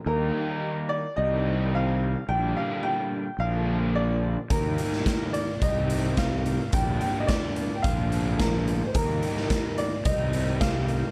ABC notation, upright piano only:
X:1
M:4/4
L:1/16
Q:1/4=108
K:Eblyd
V:1 name="Upright piano"
B6 d2 e4 f4 | g2 f2 g4 f4 d3 z | B6 d2 e4 f4 | g2 g3/2 e/2 d3- d/2 g/2 f4 B3 z/2 c/2 |
B6 d2 e4 f4 |]